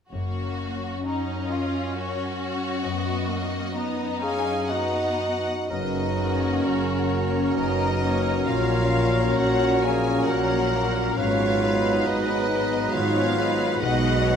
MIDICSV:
0, 0, Header, 1, 13, 480
1, 0, Start_track
1, 0, Key_signature, 6, "major"
1, 0, Tempo, 934579
1, 63, Time_signature, 3, 2, 24, 8
1, 542, Tempo, 898204
1, 1982, Tempo, 953895
1, 2462, Tempo, 1003344
1, 2942, Tempo, 923077
1, 4862, Tempo, 884956
1, 7553, End_track
2, 0, Start_track
2, 0, Title_t, "Violin section"
2, 0, Program_c, 0, 48
2, 68, Note_on_c, 0, 73, 31
2, 523, Note_off_c, 0, 73, 0
2, 548, Note_on_c, 0, 75, 36
2, 1026, Note_off_c, 0, 75, 0
2, 1031, Note_on_c, 0, 73, 50
2, 1254, Note_off_c, 0, 73, 0
2, 1261, Note_on_c, 0, 73, 50
2, 1493, Note_off_c, 0, 73, 0
2, 1496, Note_on_c, 0, 75, 52
2, 2212, Note_on_c, 0, 80, 70
2, 2218, Note_off_c, 0, 75, 0
2, 2441, Note_off_c, 0, 80, 0
2, 2452, Note_on_c, 0, 75, 48
2, 2453, Note_on_c, 0, 78, 59
2, 2828, Note_off_c, 0, 75, 0
2, 2938, Note_off_c, 0, 78, 0
2, 2940, Note_on_c, 0, 75, 57
2, 3421, Note_off_c, 0, 75, 0
2, 3424, Note_on_c, 0, 73, 51
2, 3893, Note_on_c, 0, 75, 63
2, 3900, Note_off_c, 0, 73, 0
2, 4380, Note_off_c, 0, 75, 0
2, 4380, Note_on_c, 0, 77, 59
2, 4858, Note_off_c, 0, 77, 0
2, 4858, Note_on_c, 0, 78, 60
2, 5097, Note_off_c, 0, 78, 0
2, 5103, Note_on_c, 0, 80, 59
2, 5339, Note_on_c, 0, 78, 58
2, 5343, Note_off_c, 0, 80, 0
2, 5823, Note_off_c, 0, 78, 0
2, 5824, Note_on_c, 0, 77, 68
2, 6298, Note_off_c, 0, 77, 0
2, 6305, Note_on_c, 0, 75, 65
2, 6779, Note_on_c, 0, 77, 65
2, 6783, Note_off_c, 0, 75, 0
2, 7254, Note_on_c, 0, 78, 71
2, 7259, Note_off_c, 0, 77, 0
2, 7553, Note_off_c, 0, 78, 0
2, 7553, End_track
3, 0, Start_track
3, 0, Title_t, "Flute"
3, 0, Program_c, 1, 73
3, 2222, Note_on_c, 1, 77, 57
3, 2458, Note_on_c, 1, 75, 46
3, 2465, Note_off_c, 1, 77, 0
3, 2940, Note_off_c, 1, 75, 0
3, 2949, Note_on_c, 1, 71, 57
3, 3437, Note_on_c, 1, 70, 43
3, 3445, Note_off_c, 1, 71, 0
3, 3908, Note_on_c, 1, 71, 54
3, 3916, Note_off_c, 1, 70, 0
3, 4382, Note_off_c, 1, 71, 0
3, 4385, Note_on_c, 1, 73, 56
3, 4851, Note_off_c, 1, 73, 0
3, 4865, Note_on_c, 1, 73, 52
3, 5105, Note_on_c, 1, 77, 46
3, 5113, Note_off_c, 1, 73, 0
3, 5342, Note_on_c, 1, 73, 49
3, 5350, Note_off_c, 1, 77, 0
3, 5678, Note_off_c, 1, 73, 0
3, 5827, Note_on_c, 1, 73, 61
3, 6309, Note_on_c, 1, 71, 62
3, 6317, Note_off_c, 1, 73, 0
3, 6781, Note_on_c, 1, 73, 59
3, 6789, Note_off_c, 1, 71, 0
3, 7260, Note_off_c, 1, 73, 0
3, 7266, Note_on_c, 1, 75, 68
3, 7553, Note_off_c, 1, 75, 0
3, 7553, End_track
4, 0, Start_track
4, 0, Title_t, "Oboe"
4, 0, Program_c, 2, 68
4, 2938, Note_on_c, 2, 70, 43
4, 5801, Note_off_c, 2, 70, 0
4, 5824, Note_on_c, 2, 71, 47
4, 7553, Note_off_c, 2, 71, 0
4, 7553, End_track
5, 0, Start_track
5, 0, Title_t, "Violin section"
5, 0, Program_c, 3, 48
5, 59, Note_on_c, 3, 66, 36
5, 518, Note_off_c, 3, 66, 0
5, 540, Note_on_c, 3, 63, 43
5, 778, Note_off_c, 3, 63, 0
5, 780, Note_on_c, 3, 65, 42
5, 1017, Note_on_c, 3, 66, 47
5, 1021, Note_off_c, 3, 65, 0
5, 1979, Note_off_c, 3, 66, 0
5, 1986, Note_on_c, 3, 63, 54
5, 2456, Note_off_c, 3, 63, 0
5, 2462, Note_on_c, 3, 63, 48
5, 2833, Note_off_c, 3, 63, 0
5, 2941, Note_on_c, 3, 66, 48
5, 3883, Note_off_c, 3, 66, 0
5, 3912, Note_on_c, 3, 70, 44
5, 4144, Note_off_c, 3, 70, 0
5, 4153, Note_on_c, 3, 73, 44
5, 4385, Note_off_c, 3, 73, 0
5, 4393, Note_on_c, 3, 73, 52
5, 5328, Note_off_c, 3, 73, 0
5, 5345, Note_on_c, 3, 70, 47
5, 5826, Note_off_c, 3, 70, 0
5, 5831, Note_on_c, 3, 73, 54
5, 6070, Note_off_c, 3, 73, 0
5, 6074, Note_on_c, 3, 71, 46
5, 6788, Note_off_c, 3, 71, 0
5, 6791, Note_on_c, 3, 73, 49
5, 7021, Note_off_c, 3, 73, 0
5, 7032, Note_on_c, 3, 71, 52
5, 7267, Note_off_c, 3, 71, 0
5, 7268, Note_on_c, 3, 75, 55
5, 7501, Note_on_c, 3, 73, 61
5, 7505, Note_off_c, 3, 75, 0
5, 7553, Note_off_c, 3, 73, 0
5, 7553, End_track
6, 0, Start_track
6, 0, Title_t, "Clarinet"
6, 0, Program_c, 4, 71
6, 2223, Note_on_c, 4, 68, 64
6, 2465, Note_on_c, 4, 66, 52
6, 2472, Note_off_c, 4, 68, 0
6, 2940, Note_off_c, 4, 66, 0
6, 2943, Note_on_c, 4, 63, 55
6, 3431, Note_on_c, 4, 61, 42
6, 3439, Note_off_c, 4, 63, 0
6, 3891, Note_off_c, 4, 61, 0
6, 3895, Note_on_c, 4, 63, 53
6, 4390, Note_on_c, 4, 65, 50
6, 4398, Note_off_c, 4, 63, 0
6, 4863, Note_on_c, 4, 66, 52
6, 4872, Note_off_c, 4, 65, 0
6, 5106, Note_on_c, 4, 68, 60
6, 5114, Note_off_c, 4, 66, 0
6, 5346, Note_on_c, 4, 66, 48
6, 5354, Note_off_c, 4, 68, 0
6, 5680, Note_off_c, 4, 66, 0
6, 5826, Note_on_c, 4, 65, 58
6, 6309, Note_on_c, 4, 63, 58
6, 6317, Note_off_c, 4, 65, 0
6, 6784, Note_on_c, 4, 65, 62
6, 6792, Note_off_c, 4, 63, 0
6, 7258, Note_off_c, 4, 65, 0
6, 7261, Note_on_c, 4, 66, 55
6, 7553, Note_off_c, 4, 66, 0
6, 7553, End_track
7, 0, Start_track
7, 0, Title_t, "Harp"
7, 0, Program_c, 5, 46
7, 64, Note_on_c, 5, 42, 36
7, 221, Note_on_c, 5, 58, 27
7, 382, Note_on_c, 5, 61, 30
7, 543, Note_on_c, 5, 66, 33
7, 702, Note_on_c, 5, 70, 35
7, 864, Note_on_c, 5, 73, 35
7, 1018, Note_off_c, 5, 70, 0
7, 1025, Note_on_c, 5, 70, 37
7, 1175, Note_off_c, 5, 66, 0
7, 1181, Note_on_c, 5, 66, 40
7, 1334, Note_off_c, 5, 61, 0
7, 1340, Note_on_c, 5, 61, 38
7, 1492, Note_off_c, 5, 42, 0
7, 1499, Note_on_c, 5, 42, 54
7, 1515, Note_off_c, 5, 58, 0
7, 1517, Note_off_c, 5, 61, 0
7, 1518, Note_off_c, 5, 70, 0
7, 1518, Note_off_c, 5, 73, 0
7, 1662, Note_on_c, 5, 59, 37
7, 1821, Note_on_c, 5, 63, 38
7, 1975, Note_off_c, 5, 66, 0
7, 1982, Note_on_c, 5, 66, 37
7, 2140, Note_on_c, 5, 71, 40
7, 2299, Note_on_c, 5, 75, 39
7, 2455, Note_off_c, 5, 71, 0
7, 2461, Note_on_c, 5, 71, 38
7, 2616, Note_off_c, 5, 66, 0
7, 2622, Note_on_c, 5, 66, 38
7, 2779, Note_off_c, 5, 63, 0
7, 2785, Note_on_c, 5, 63, 30
7, 2937, Note_off_c, 5, 42, 0
7, 2943, Note_on_c, 5, 42, 41
7, 2962, Note_off_c, 5, 63, 0
7, 2962, Note_off_c, 5, 71, 0
7, 2963, Note_off_c, 5, 75, 0
7, 2965, Note_off_c, 5, 59, 0
7, 3191, Note_on_c, 5, 61, 35
7, 3431, Note_on_c, 5, 58, 30
7, 3659, Note_off_c, 5, 61, 0
7, 3666, Note_on_c, 5, 61, 31
7, 3901, Note_on_c, 5, 49, 31
7, 4138, Note_off_c, 5, 61, 0
7, 4144, Note_on_c, 5, 61, 31
7, 4383, Note_on_c, 5, 46, 44
7, 4403, Note_off_c, 5, 49, 0
7, 4405, Note_off_c, 5, 42, 0
7, 4618, Note_off_c, 5, 61, 0
7, 4622, Note_off_c, 5, 66, 0
7, 4624, Note_on_c, 5, 61, 32
7, 4856, Note_off_c, 5, 58, 0
7, 4862, Note_on_c, 5, 58, 31
7, 5097, Note_off_c, 5, 61, 0
7, 5103, Note_on_c, 5, 61, 31
7, 5341, Note_on_c, 5, 54, 34
7, 5576, Note_off_c, 5, 61, 0
7, 5582, Note_on_c, 5, 61, 37
7, 5824, Note_on_c, 5, 44, 42
7, 5843, Note_off_c, 5, 46, 0
7, 5844, Note_off_c, 5, 61, 0
7, 5845, Note_off_c, 5, 58, 0
7, 6065, Note_on_c, 5, 63, 36
7, 6307, Note_on_c, 5, 59, 34
7, 6543, Note_off_c, 5, 63, 0
7, 6550, Note_on_c, 5, 63, 38
7, 6783, Note_on_c, 5, 51, 33
7, 7014, Note_off_c, 5, 63, 0
7, 7021, Note_on_c, 5, 63, 35
7, 7258, Note_on_c, 5, 47, 45
7, 7281, Note_off_c, 5, 44, 0
7, 7281, Note_off_c, 5, 51, 0
7, 7281, Note_off_c, 5, 54, 0
7, 7492, Note_off_c, 5, 63, 0
7, 7499, Note_on_c, 5, 63, 42
7, 7553, Note_off_c, 5, 47, 0
7, 7553, Note_off_c, 5, 59, 0
7, 7553, Note_off_c, 5, 63, 0
7, 7553, End_track
8, 0, Start_track
8, 0, Title_t, "French horn section"
8, 0, Program_c, 6, 60
8, 2935, Note_on_c, 6, 61, 41
8, 2938, Note_on_c, 6, 58, 40
8, 5799, Note_off_c, 6, 61, 0
8, 5801, Note_off_c, 6, 58, 0
8, 5826, Note_on_c, 6, 59, 41
8, 5828, Note_on_c, 6, 63, 45
8, 7553, Note_off_c, 6, 59, 0
8, 7553, Note_off_c, 6, 63, 0
8, 7553, End_track
9, 0, Start_track
9, 0, Title_t, "Viola section"
9, 0, Program_c, 7, 48
9, 61, Note_on_c, 7, 58, 34
9, 520, Note_off_c, 7, 58, 0
9, 539, Note_on_c, 7, 61, 39
9, 1497, Note_off_c, 7, 61, 0
9, 1497, Note_on_c, 7, 59, 51
9, 1734, Note_on_c, 7, 58, 54
9, 1738, Note_off_c, 7, 59, 0
9, 1979, Note_on_c, 7, 59, 52
9, 1980, Note_off_c, 7, 58, 0
9, 2212, Note_off_c, 7, 59, 0
9, 2214, Note_on_c, 7, 61, 50
9, 2460, Note_off_c, 7, 61, 0
9, 2461, Note_on_c, 7, 59, 42
9, 2840, Note_off_c, 7, 59, 0
9, 3189, Note_on_c, 7, 61, 38
9, 3190, Note_on_c, 7, 58, 39
9, 3657, Note_off_c, 7, 58, 0
9, 3657, Note_off_c, 7, 61, 0
9, 3663, Note_on_c, 7, 58, 35
9, 3663, Note_on_c, 7, 61, 38
9, 4133, Note_off_c, 7, 58, 0
9, 4133, Note_off_c, 7, 61, 0
9, 4143, Note_on_c, 7, 61, 38
9, 4144, Note_on_c, 7, 58, 39
9, 4378, Note_off_c, 7, 58, 0
9, 4378, Note_off_c, 7, 61, 0
9, 4384, Note_on_c, 7, 58, 36
9, 4385, Note_on_c, 7, 61, 34
9, 4619, Note_off_c, 7, 58, 0
9, 4620, Note_off_c, 7, 61, 0
9, 4627, Note_on_c, 7, 58, 36
9, 4628, Note_on_c, 7, 61, 39
9, 5095, Note_off_c, 7, 58, 0
9, 5095, Note_off_c, 7, 61, 0
9, 5103, Note_on_c, 7, 58, 43
9, 5103, Note_on_c, 7, 61, 36
9, 5573, Note_off_c, 7, 61, 0
9, 5574, Note_off_c, 7, 58, 0
9, 5584, Note_on_c, 7, 61, 38
9, 5585, Note_on_c, 7, 58, 41
9, 5821, Note_off_c, 7, 58, 0
9, 5821, Note_off_c, 7, 61, 0
9, 6065, Note_on_c, 7, 63, 43
9, 6066, Note_on_c, 7, 59, 42
9, 6537, Note_off_c, 7, 59, 0
9, 6537, Note_off_c, 7, 63, 0
9, 6547, Note_on_c, 7, 59, 42
9, 6548, Note_on_c, 7, 63, 45
9, 7013, Note_off_c, 7, 59, 0
9, 7013, Note_off_c, 7, 63, 0
9, 7023, Note_on_c, 7, 63, 46
9, 7024, Note_on_c, 7, 59, 43
9, 7258, Note_off_c, 7, 63, 0
9, 7259, Note_off_c, 7, 59, 0
9, 7266, Note_on_c, 7, 56, 40
9, 7266, Note_on_c, 7, 63, 41
9, 7498, Note_off_c, 7, 63, 0
9, 7499, Note_off_c, 7, 56, 0
9, 7504, Note_on_c, 7, 63, 44
9, 7505, Note_on_c, 7, 56, 49
9, 7553, Note_off_c, 7, 56, 0
9, 7553, Note_off_c, 7, 63, 0
9, 7553, End_track
10, 0, Start_track
10, 0, Title_t, "Bassoon"
10, 0, Program_c, 8, 70
10, 2939, Note_on_c, 8, 54, 39
10, 5802, Note_off_c, 8, 54, 0
10, 5828, Note_on_c, 8, 54, 41
10, 7097, Note_off_c, 8, 54, 0
10, 7261, Note_on_c, 8, 56, 47
10, 7553, Note_off_c, 8, 56, 0
10, 7553, End_track
11, 0, Start_track
11, 0, Title_t, "Trombone section"
11, 0, Program_c, 10, 61
11, 2944, Note_on_c, 10, 54, 46
11, 2946, Note_on_c, 10, 49, 47
11, 4367, Note_off_c, 10, 49, 0
11, 4385, Note_on_c, 10, 46, 44
11, 5804, Note_off_c, 10, 54, 0
11, 5819, Note_on_c, 10, 44, 47
11, 5819, Note_on_c, 10, 54, 47
11, 5825, Note_off_c, 10, 46, 0
11, 7238, Note_off_c, 10, 54, 0
11, 7261, Note_on_c, 10, 51, 59
11, 7553, Note_off_c, 10, 44, 0
11, 7553, Note_off_c, 10, 51, 0
11, 7553, End_track
12, 0, Start_track
12, 0, Title_t, "Cello section"
12, 0, Program_c, 11, 48
12, 59, Note_on_c, 11, 42, 35
12, 2820, Note_off_c, 11, 42, 0
12, 2940, Note_on_c, 11, 42, 48
12, 3374, Note_off_c, 11, 42, 0
12, 3426, Note_on_c, 11, 42, 43
12, 3845, Note_off_c, 11, 42, 0
12, 3899, Note_on_c, 11, 42, 47
12, 4326, Note_off_c, 11, 42, 0
12, 4381, Note_on_c, 11, 46, 50
12, 4803, Note_off_c, 11, 46, 0
12, 4862, Note_on_c, 11, 46, 49
12, 5287, Note_off_c, 11, 46, 0
12, 5342, Note_on_c, 11, 46, 48
12, 5767, Note_off_c, 11, 46, 0
12, 5826, Note_on_c, 11, 44, 50
12, 6253, Note_off_c, 11, 44, 0
12, 6308, Note_on_c, 11, 44, 50
12, 6729, Note_off_c, 11, 44, 0
12, 6787, Note_on_c, 11, 44, 53
12, 7207, Note_off_c, 11, 44, 0
12, 7261, Note_on_c, 11, 47, 57
12, 7553, Note_off_c, 11, 47, 0
12, 7553, End_track
13, 0, Start_track
13, 0, Title_t, "Double bass section"
13, 0, Program_c, 12, 48
13, 63, Note_on_c, 12, 30, 35
13, 521, Note_off_c, 12, 30, 0
13, 2941, Note_on_c, 12, 30, 52
13, 3375, Note_off_c, 12, 30, 0
13, 3427, Note_on_c, 12, 30, 41
13, 3846, Note_off_c, 12, 30, 0
13, 3903, Note_on_c, 12, 30, 45
13, 4328, Note_off_c, 12, 30, 0
13, 4380, Note_on_c, 12, 34, 53
13, 4803, Note_off_c, 12, 34, 0
13, 4858, Note_on_c, 12, 34, 46
13, 5285, Note_off_c, 12, 34, 0
13, 5343, Note_on_c, 12, 34, 48
13, 5768, Note_off_c, 12, 34, 0
13, 5826, Note_on_c, 12, 32, 51
13, 6252, Note_off_c, 12, 32, 0
13, 6308, Note_on_c, 12, 32, 42
13, 6729, Note_off_c, 12, 32, 0
13, 6780, Note_on_c, 12, 32, 54
13, 7204, Note_off_c, 12, 32, 0
13, 7260, Note_on_c, 12, 35, 65
13, 7553, Note_off_c, 12, 35, 0
13, 7553, End_track
0, 0, End_of_file